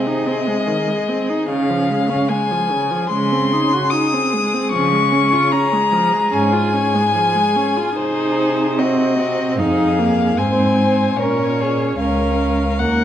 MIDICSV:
0, 0, Header, 1, 5, 480
1, 0, Start_track
1, 0, Key_signature, -5, "major"
1, 0, Tempo, 807537
1, 887, Time_signature, 4, 2, 24, 8
1, 3760, Tempo, 821918
1, 5200, Tempo, 803213
1, 7740, End_track
2, 0, Start_track
2, 0, Title_t, "Violin"
2, 0, Program_c, 0, 40
2, 0, Note_on_c, 0, 75, 59
2, 884, Note_off_c, 0, 75, 0
2, 887, Note_on_c, 0, 77, 67
2, 1359, Note_on_c, 0, 80, 69
2, 1368, Note_off_c, 0, 77, 0
2, 1836, Note_off_c, 0, 80, 0
2, 1840, Note_on_c, 0, 84, 76
2, 2321, Note_on_c, 0, 87, 68
2, 2330, Note_off_c, 0, 84, 0
2, 2801, Note_off_c, 0, 87, 0
2, 2804, Note_on_c, 0, 85, 79
2, 3278, Note_on_c, 0, 82, 78
2, 3287, Note_off_c, 0, 85, 0
2, 3761, Note_on_c, 0, 80, 75
2, 3770, Note_off_c, 0, 82, 0
2, 4716, Note_on_c, 0, 72, 69
2, 4725, Note_off_c, 0, 80, 0
2, 5196, Note_on_c, 0, 75, 63
2, 5205, Note_off_c, 0, 72, 0
2, 5674, Note_off_c, 0, 75, 0
2, 5678, Note_on_c, 0, 77, 71
2, 6144, Note_on_c, 0, 80, 68
2, 6153, Note_off_c, 0, 77, 0
2, 6619, Note_on_c, 0, 73, 67
2, 6628, Note_off_c, 0, 80, 0
2, 7105, Note_off_c, 0, 73, 0
2, 7108, Note_on_c, 0, 77, 65
2, 7591, Note_on_c, 0, 78, 73
2, 7600, Note_off_c, 0, 77, 0
2, 7740, Note_off_c, 0, 78, 0
2, 7740, End_track
3, 0, Start_track
3, 0, Title_t, "Violin"
3, 0, Program_c, 1, 40
3, 0, Note_on_c, 1, 68, 43
3, 1825, Note_off_c, 1, 68, 0
3, 1848, Note_on_c, 1, 68, 48
3, 4696, Note_off_c, 1, 68, 0
3, 4726, Note_on_c, 1, 68, 53
3, 5201, Note_on_c, 1, 66, 46
3, 5210, Note_off_c, 1, 68, 0
3, 5677, Note_off_c, 1, 66, 0
3, 5680, Note_on_c, 1, 68, 50
3, 6154, Note_on_c, 1, 72, 44
3, 6163, Note_off_c, 1, 68, 0
3, 6392, Note_off_c, 1, 72, 0
3, 6400, Note_on_c, 1, 72, 46
3, 6637, Note_on_c, 1, 70, 50
3, 6646, Note_off_c, 1, 72, 0
3, 6877, Note_on_c, 1, 68, 47
3, 6886, Note_off_c, 1, 70, 0
3, 7119, Note_off_c, 1, 68, 0
3, 7125, Note_on_c, 1, 70, 44
3, 7591, Note_off_c, 1, 70, 0
3, 7603, Note_on_c, 1, 70, 49
3, 7740, Note_off_c, 1, 70, 0
3, 7740, End_track
4, 0, Start_track
4, 0, Title_t, "Viola"
4, 0, Program_c, 2, 41
4, 40, Note_on_c, 2, 63, 38
4, 158, Note_on_c, 2, 60, 39
4, 167, Note_off_c, 2, 63, 0
4, 281, Note_on_c, 2, 56, 39
4, 290, Note_off_c, 2, 60, 0
4, 398, Note_on_c, 2, 51, 40
4, 407, Note_off_c, 2, 56, 0
4, 521, Note_on_c, 2, 56, 38
4, 529, Note_off_c, 2, 51, 0
4, 648, Note_on_c, 2, 60, 42
4, 656, Note_off_c, 2, 56, 0
4, 768, Note_on_c, 2, 63, 44
4, 777, Note_off_c, 2, 60, 0
4, 888, Note_off_c, 2, 63, 0
4, 892, Note_on_c, 2, 49, 45
4, 1011, Note_on_c, 2, 53, 40
4, 1020, Note_off_c, 2, 49, 0
4, 1130, Note_on_c, 2, 56, 42
4, 1139, Note_off_c, 2, 53, 0
4, 1248, Note_on_c, 2, 61, 42
4, 1257, Note_off_c, 2, 56, 0
4, 1369, Note_on_c, 2, 56, 45
4, 1378, Note_off_c, 2, 61, 0
4, 1495, Note_on_c, 2, 53, 40
4, 1504, Note_off_c, 2, 56, 0
4, 1613, Note_on_c, 2, 49, 42
4, 1622, Note_off_c, 2, 53, 0
4, 1731, Note_on_c, 2, 53, 41
4, 1740, Note_off_c, 2, 49, 0
4, 1851, Note_off_c, 2, 53, 0
4, 1856, Note_on_c, 2, 56, 50
4, 1976, Note_on_c, 2, 60, 42
4, 1985, Note_off_c, 2, 56, 0
4, 2099, Note_on_c, 2, 63, 42
4, 2108, Note_off_c, 2, 60, 0
4, 2215, Note_on_c, 2, 66, 42
4, 2224, Note_off_c, 2, 63, 0
4, 2334, Note_on_c, 2, 63, 47
4, 2343, Note_off_c, 2, 66, 0
4, 2458, Note_on_c, 2, 60, 43
4, 2467, Note_off_c, 2, 63, 0
4, 2578, Note_on_c, 2, 56, 45
4, 2587, Note_off_c, 2, 60, 0
4, 2698, Note_on_c, 2, 60, 47
4, 2707, Note_off_c, 2, 56, 0
4, 2813, Note_off_c, 2, 60, 0
4, 2816, Note_on_c, 2, 53, 44
4, 2928, Note_on_c, 2, 56, 40
4, 2937, Note_off_c, 2, 53, 0
4, 3046, Note_on_c, 2, 61, 42
4, 3055, Note_off_c, 2, 56, 0
4, 3164, Note_on_c, 2, 65, 41
4, 3173, Note_off_c, 2, 61, 0
4, 3286, Note_on_c, 2, 61, 46
4, 3295, Note_off_c, 2, 65, 0
4, 3406, Note_on_c, 2, 56, 41
4, 3415, Note_off_c, 2, 61, 0
4, 3522, Note_on_c, 2, 53, 44
4, 3530, Note_off_c, 2, 56, 0
4, 3641, Note_on_c, 2, 56, 41
4, 3650, Note_off_c, 2, 53, 0
4, 3760, Note_off_c, 2, 56, 0
4, 3763, Note_on_c, 2, 61, 53
4, 3877, Note_on_c, 2, 65, 45
4, 3886, Note_off_c, 2, 61, 0
4, 4001, Note_on_c, 2, 61, 43
4, 4010, Note_off_c, 2, 65, 0
4, 4123, Note_on_c, 2, 56, 42
4, 4131, Note_off_c, 2, 61, 0
4, 4241, Note_on_c, 2, 53, 47
4, 4250, Note_off_c, 2, 56, 0
4, 4360, Note_on_c, 2, 56, 48
4, 4369, Note_off_c, 2, 53, 0
4, 4481, Note_on_c, 2, 61, 49
4, 4490, Note_off_c, 2, 56, 0
4, 4603, Note_on_c, 2, 65, 47
4, 4612, Note_off_c, 2, 61, 0
4, 4714, Note_off_c, 2, 65, 0
4, 4717, Note_on_c, 2, 63, 49
4, 5199, Note_on_c, 2, 60, 52
4, 5207, Note_off_c, 2, 63, 0
4, 5435, Note_off_c, 2, 60, 0
4, 5438, Note_on_c, 2, 60, 49
4, 5678, Note_on_c, 2, 63, 57
4, 5687, Note_off_c, 2, 60, 0
4, 5918, Note_on_c, 2, 58, 47
4, 5927, Note_off_c, 2, 63, 0
4, 6152, Note_on_c, 2, 60, 50
4, 6161, Note_off_c, 2, 58, 0
4, 6628, Note_off_c, 2, 60, 0
4, 6632, Note_on_c, 2, 61, 44
4, 7108, Note_off_c, 2, 61, 0
4, 7117, Note_on_c, 2, 61, 46
4, 7595, Note_on_c, 2, 58, 47
4, 7604, Note_off_c, 2, 61, 0
4, 7740, Note_off_c, 2, 58, 0
4, 7740, End_track
5, 0, Start_track
5, 0, Title_t, "Cello"
5, 0, Program_c, 3, 42
5, 0, Note_on_c, 3, 48, 45
5, 317, Note_off_c, 3, 48, 0
5, 887, Note_on_c, 3, 49, 48
5, 1287, Note_off_c, 3, 49, 0
5, 1849, Note_on_c, 3, 49, 50
5, 2251, Note_off_c, 3, 49, 0
5, 2814, Note_on_c, 3, 49, 56
5, 3204, Note_off_c, 3, 49, 0
5, 3761, Note_on_c, 3, 44, 53
5, 4158, Note_off_c, 3, 44, 0
5, 4721, Note_on_c, 3, 48, 50
5, 5678, Note_on_c, 3, 41, 52
5, 5687, Note_off_c, 3, 48, 0
5, 6149, Note_off_c, 3, 41, 0
5, 6153, Note_on_c, 3, 44, 52
5, 6622, Note_off_c, 3, 44, 0
5, 6630, Note_on_c, 3, 46, 49
5, 7107, Note_off_c, 3, 46, 0
5, 7113, Note_on_c, 3, 37, 50
5, 7597, Note_on_c, 3, 39, 48
5, 7606, Note_off_c, 3, 37, 0
5, 7740, Note_off_c, 3, 39, 0
5, 7740, End_track
0, 0, End_of_file